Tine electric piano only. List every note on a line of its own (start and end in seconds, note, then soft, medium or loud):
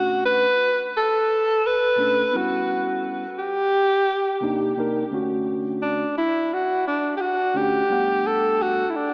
0.00 0.44 B2 medium
0.00 0.45 A3 medium
0.00 0.45 C#4 medium
0.00 0.46 D4 medium
0.00 0.46 F#4 medium
1.97 2.22 B2 medium
1.97 2.23 A3 medium
1.97 2.23 C#4 medium
1.97 2.24 D4 medium
1.97 2.24 A4 medium
2.31 3.25 G3 medium
2.31 3.24 B3 medium
2.31 3.24 C#4 medium
2.31 3.25 E4 medium
4.41 4.71 C3 medium
4.41 4.72 A#3 medium
4.41 4.72 D4 medium
4.41 4.72 D#4 medium
4.41 4.73 G4 medium
4.76 5.02 C3 medium
4.76 5.02 A#3 medium
4.76 5.03 D4 medium
4.76 5.03 D#4 medium
4.76 5.04 A#4 medium
5.11 6.03 D3 medium
5.11 6.03 A3 medium
5.11 6.04 C#4 medium
5.11 6.04 D4 medium
5.11 6.05 F#4 medium
7.54 7.80 D3 medium
7.54 7.81 A3 medium
7.54 7.81 C#4 medium
7.54 7.82 D4 medium
7.54 7.82 F#4 medium
7.89 8.81 E2 medium
7.89 8.82 G3 medium
7.89 8.82 A3 medium
7.89 8.82 B3 medium
7.89 8.83 D4 medium
7.89 8.83 F#5 medium